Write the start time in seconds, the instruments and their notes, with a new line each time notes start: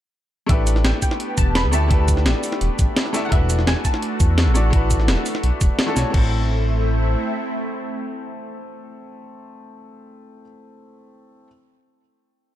0.46 analog synth bass A1, grand piano A3 D4 E4, analog synth pad B3 D4 G4, synth pluck E5, kick, closed hi-hat
0.50 grand piano G4 B4
0.67 closed hi-hat, cabasa
0.76 snare
0.85 analog synth bass A1, synth pluck G5, snare, closed hi-hat
1.02 synth pluck G5, kick, closed hi-hat, cabasa
1.11 snare
1.20 closed hi-hat
1.38 analog synth bass E1, synth pluck A5, kick, closed hi-hat, cabasa
1.55 synth pluck B5, snare, closed hi-hat
1.64 analog synth bass D2
1.71 grand piano A3 D4 E4 G4 E5, synth pluck A5, closed hi-hat, cabasa
1.88 grand piano A3 D4 E4, kick, closed hi-hat
1.92 grand piano G4 B4
2.08 kick, closed hi-hat, cabasa
2.17 snare
2.26 analog synth bass A1, snare, closed hi-hat
2.43 open hi-hat, cabasa
2.52 snare
2.61 analog synth bass E1, closed hi-hat
2.79 analog synth bass A1, kick, closed hi-hat, cabasa
2.96 snare, closed hi-hat
3.06 snare
3.13 grand piano A3 D4 E4 G4 E5, snare, closed hi-hat, cabasa
3.25 synth pluck F#5
3.29 analog synth bass E1, grand piano A3 D4 E4, analog synth pad A3 F#4, synth pluck E5, kick, closed hi-hat
3.33 grand piano F#4 B4
3.50 closed hi-hat, cabasa
3.59 snare
3.67 analog synth bass E1, synth pluck G#5, snare, closed hi-hat
3.85 synth pluck A5, kick, closed hi-hat, cabasa
3.94 snare
4.02 closed hi-hat
4.20 analog synth bass E2, kick, closed hi-hat, cabasa
4.38 snare, closed hi-hat
4.47 analog synth bass A1
4.54 grand piano A3 D4 E4 F#4 D5, closed hi-hat, cabasa
4.70 grand piano A3 D4 E4 F#4, kick, closed hi-hat
4.76 grand piano B4
4.91 kick, closed hi-hat, cabasa
5.00 snare
5.08 analog synth bass E1, snare, closed hi-hat
5.26 open hi-hat, cabasa
5.35 snare
5.43 analog synth bass B1, closed hi-hat
5.61 analog synth bass E1, kick, closed hi-hat, cabasa
5.79 snare, closed hi-hat
5.86 grand piano A3 D4 E4 F#4 A4, snare
5.95 analog synth bass B1, grand piano A3 D4 E4 F#4 C#5, snare, closed hi-hat, cabasa
6.10 analog synth bass A1, grand piano A3 C4, analog synth pad A3 C4 E4, kick, crash
6.14 grand piano E4 A4 C5